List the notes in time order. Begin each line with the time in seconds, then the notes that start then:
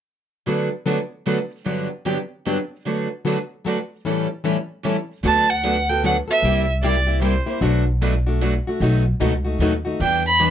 0.47 D3 F#3 A3 B3 D4 F#4 A4 B4
0.86 D3 F#3 A3 B3 D4 F#4 A4 B4
1.26 D3 F#3 A3 B3 D4 F#4 A4 B4
1.66 G2 D3 F#3 B3 D4 G4
2.05 G2 D3 F#3 B3 D4 G4
2.46 G2 D3 F#3 B3 D4 G4
2.86 D3 F#3 A3 B3 D4 F#4 A4 B4
3.25 D3 F#3 A3 B3 D4 F#4 A4 B4
3.64 D3 F#3 A3 B3 D4 F#4 A4 B4
4.05 A2 E3 G3 C#4 E4 A4
4.44 A2 E3 G3 C#4 E4 A4
4.85 A2 E3 G3 C#4 E4 A4
5.23 D2 D3 F#3 A3 B3 D4 F#4 A4 B4 A5
5.50 F#5
5.64 D3 F#3 A3 B3 D4 F#4 A4 B4
5.89 B3 F#4 A4 G5
6.03 D3 F#3 A3 B3 D4 F#4 A4 B4 F#5
6.28 B3 F#4 A4 E5
6.43 C2 C3 G3 A#3 E4 G4
6.83 C3 G3 A#3 E4 G4 D5
7.07 A#3 E4 G4
7.21 C3 G3 A#3 E4 G4 C5
7.46 A#3 E4 G4
7.60 B1 B2 F#3 A3 D4 F#4 B4
8.01 B2 F#3 A3 D4 F#4 B4
8.27 A3 D4 F#4
8.42 B2 F#3 A3 D4 F#4 B4
8.67 A3 D4 F#4
8.80 B1 B2 D#3 F#3 A3 B3 D#4 F#4 A4
9.20 C#2 B2 D#3 F#3 A3 B3 D#4 F#4 A4
9.45 A3 D#4 F#4
9.59 D#2 B2 D#3 F#3 A3 B3 D#4 F#4 A4
9.85 A3 D#4 F#4
10.00 E2 E3 G3 B3 D4 E4 G4 B4 G5
10.26 B5
10.39 E3 G3 B3 D4 E4 G4 B4